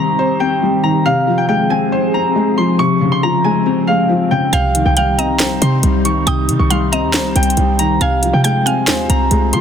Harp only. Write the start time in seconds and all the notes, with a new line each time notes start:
Already playing: A#5 C6 D#6
0.40 G5
0.84 A#5
1.06 F5
1.38 G5
1.49 G5
1.70 G#5
2.14 A#5
2.58 C6
2.79 C#6
3.12 C6
3.23 A#5
3.44 G#5
3.87 F5
4.31 G5
4.53 F5
4.86 G5
4.97 G5
5.18 A#5
5.62 C6
6.05 C#6
6.27 D#6
6.59 C#6
6.71 C6
6.92 A#5
7.36 G5
7.79 A#5
8.01 F5
8.33 G5
8.44 G5
8.66 G#5
9.10 A#5
9.53 C6